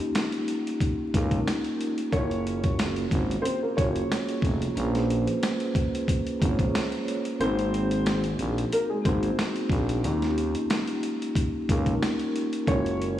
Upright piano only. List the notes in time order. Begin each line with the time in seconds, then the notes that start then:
2.12 C#4 C#5
3.42 C4 C5
3.62 A#3 A#4
3.77 C#4 C#5
7.41 C4 C5
8.73 A#3 A#4
8.90 G#3 G#4
9.05 C4 C5
12.68 C#4 C#5